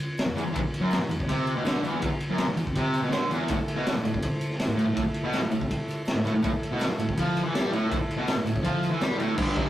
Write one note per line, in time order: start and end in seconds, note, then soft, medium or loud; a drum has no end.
0.18 snare loud
0.18 ride loud
0.18 tambourine medium
0.26 0.34 E2 medium
0.35 0.43 E2 loud
0.35 ride medium
0.35 tambourine medium
0.44 0.51 E2 medium
0.52 0.60 E2 loud
0.52 kick loud
0.52 ride medium
0.52 tambourine medium
0.61 muted distorted electric guitar stroke medium
0.73 ride medium
0.73 tambourine soft
0.81 0.99 F#2 medium
0.91 snare loud
0.91 ride loud
0.91 tambourine medium
1.00 muted distorted electric guitar stroke medium
1.09 1.19 E2 medium
1.09 ride medium
1.09 tambourine medium
1.20 kick medium
1.28 1.55 C3 medium
1.28 kick loud
1.28 ride loud
1.47 ride medium
1.47 tambourine medium
1.56 1.64 B2 loud
1.65 1.83 D3 loud
1.65 snare loud
1.65 ride medium
1.65 tambourine medium
1.83 1.99 E2 loud
1.83 ride medium
1.83 tambourine medium
2.01 2.10 E2 loud
2.01 kick loud
2.01 ride medium
2.01 tambourine medium
2.11 muted distorted electric guitar stroke medium
2.20 ride medium
2.30 2.48 F#2 medium
2.38 snare loud
2.38 ride loud
2.38 tambourine medium
2.49 muted distorted electric guitar stroke medium
2.56 2.66 E2 medium
2.56 ride medium
2.56 tambourine medium
2.67 kick medium
2.75 3.02 C3 loud
2.75 kick medium
2.75 ride medium
2.94 ride medium
2.94 tambourine medium
3.02 3.11 B2 loud
3.02 snare soft
3.11 3.30 D3 loud
3.11 snare loud
3.11 ride medium
3.11 tambourine medium
3.30 3.48 E2 medium
3.30 ride medium
3.30 tambourine medium
3.48 3.58 A2 loud
3.48 3.83 E4 medium
3.48 3.83 A4 medium
3.48 3.83 E5 medium
3.48 kick loud
3.48 ride loud
3.48 tambourine medium
3.59 muted distorted electric guitar stroke medium
3.68 ride medium
3.68 tambourine soft
3.76 3.94 B2 loud
3.86 4.20 E4 medium
3.86 4.19 A4 medium
3.86 4.20 D5 medium
3.86 snare loud
3.86 ride loud
3.86 tambourine loud
3.95 muted distorted electric guitar stroke medium
4.03 4.13 A2 medium
4.03 ride medium
4.03 tambourine medium
4.14 kick medium
4.21 4.56 E4 medium
4.21 4.56 A4 medium
4.21 4.56 C5 medium
4.21 kick loud
4.21 ride loud
4.21 tambourine soft
4.41 ride medium
4.41 tambourine medium
4.50 snare soft
4.59 4.93 E4 medium
4.59 4.94 A4 medium
4.59 4.93 E5 loud
4.59 snare loud
4.59 ride medium
4.59 tambourine medium
4.68 4.75 A2 medium
4.76 4.85 A2 loud
4.76 ride medium
4.76 tambourine medium
4.87 4.93 A2 medium
4.94 5.03 A2 loud
4.94 5.30 E4 medium
4.94 5.30 A4 medium
4.94 5.30 E5 medium
4.94 kick loud
4.94 ride medium
4.94 tambourine medium
5.04 muted distorted electric guitar stroke medium
5.14 ride medium
5.14 tambourine soft
5.24 5.42 B2 loud
5.33 5.67 E4 medium
5.33 5.66 A4 medium
5.33 5.66 E5 medium
5.33 snare loud
5.33 ride medium
5.33 tambourine medium
5.42 muted distorted electric guitar stroke medium
5.50 5.60 A2 medium
5.50 ride medium
5.50 tambourine medium
5.61 kick medium
5.67 6.03 E4 medium
5.67 6.02 A4 medium
5.67 6.03 E5 medium
5.67 kick medium
5.67 ride medium
5.67 tambourine soft
5.88 ride medium
5.88 tambourine medium
6.05 6.40 E4 medium
6.05 6.40 A4 medium
6.05 6.40 E5 loud
6.05 snare loud
6.05 ride medium
6.05 tambourine medium
6.15 6.24 A2 medium
6.24 6.33 A2 loud
6.24 ride medium
6.24 tambourine medium
6.35 6.41 A2 medium
6.42 6.51 A2 loud
6.42 6.77 E4 medium
6.42 6.76 A4 medium
6.42 6.77 E5 medium
6.42 kick loud
6.42 ride medium
6.42 tambourine medium
6.52 muted distorted electric guitar stroke medium
6.61 ride medium
6.61 tambourine soft
6.72 6.89 B2 loud
6.78 7.13 E4 medium
6.78 7.13 A4 medium
6.78 7.13 E5 medium
6.78 snare loud
6.78 ride loud
6.78 tambourine medium
6.89 muted distorted electric guitar stroke medium
6.98 7.08 A2 medium
6.98 ride medium
6.98 tambourine medium
7.09 kick medium
7.16 7.44 F3 loud
7.16 7.50 E4 medium
7.16 7.50 A4 medium
7.16 7.51 B4 medium
7.16 kick medium
7.16 ride loud
7.36 ride medium
7.36 tambourine medium
7.45 7.54 E3 loud
7.53 7.72 G3 loud
7.53 7.87 E4 medium
7.53 7.88 A4 medium
7.53 7.87 E5 loud
7.53 snare loud
7.53 ride loud
7.53 tambourine medium
7.72 7.89 A2 medium
7.72 ride medium
7.72 tambourine medium
7.89 7.98 A2 loud
7.89 8.23 E4 medium
7.89 8.24 A4 medium
7.89 8.24 E5 loud
7.89 kick loud
7.89 ride medium
7.89 tambourine medium
7.99 muted distorted electric guitar stroke medium
8.11 ride medium
8.17 8.36 B2 loud
8.27 8.61 E4 medium
8.27 8.61 A4 medium
8.27 8.61 E5 medium
8.27 snare loud
8.27 ride loud
8.27 tambourine medium
8.37 muted distorted electric guitar stroke medium
8.45 8.55 A2 medium
8.45 ride medium
8.45 tambourine medium
8.56 kick medium
8.63 8.90 F3 loud
8.63 8.97 E4 medium
8.63 8.98 A4 medium
8.63 8.98 E5 medium
8.63 kick loud
8.63 ride medium
8.63 tambourine soft
8.83 ride medium
8.83 tambourine medium
8.91 9.00 E3 loud
8.99 9.19 G3 loud
8.99 9.34 E4 medium
8.99 9.33 A4 medium
8.99 9.33 G5 loud
8.99 snare loud
8.99 ride medium
8.99 tambourine medium
9.18 9.36 A2 loud
9.18 ride medium
9.18 tambourine medium
9.35 9.69 G2 medium
9.35 9.56 D3 loud
9.35 9.53 G3 loud
9.35 kick loud
9.35 crash loud
9.35 crash medium
9.54 9.69 D3 medium
9.54 9.69 G3 medium
9.54 kick medium
9.54 crash medium